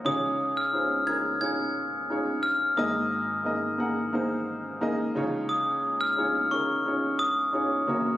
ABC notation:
X:1
M:4/4
L:1/16
Q:1/4=88
K:Db
V:1 name="Glockenspiel"
e'3 f'3 a'2 a'6 f'2 | e'8 z8 | e'3 f'3 d'4 e'6 |]
V:2 name="Upright piano"
[DEFAd]2 z2 [DEFAc]2 [DEFAB]2 [DEFAd]2 z2 [DEFAd]2 z2 | [B,EABe]2 z2 [B,EABe]2 [B,EABg]2 [B,EABc]2 z2 [B,EABe]2 [DEFAd]2- | [DEFAd]2 z2 [DEFAd]2 [DEFAB]2 [DEFAd]2 z2 [DEFAd]2 [B,DGBd]2 |]
V:3 name="Upright piano" clef=bass
[D,,D,]16 | [A,,,A,,]12- [A,,,A,,]2 [D,,D,]2- | [D,,D,]12- [D,,D,]2 [G,,,G,,]2 |]